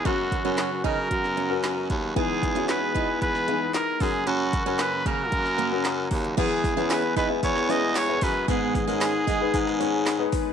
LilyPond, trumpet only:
\new Staff \with { instrumentName = "Trumpet" } { \time 4/4 \key e \lydian \tempo 4 = 114 fis'4 fis'8 ais'2 r8 | gis'4 b'4 b'4 ais'8 gis'8 | fis'4 b'8 ais'2 r8 | gis'4 b'8 b'8 cis''8 dis''8 cis''8 b'8 |
gis'8 gis'2. r8 | }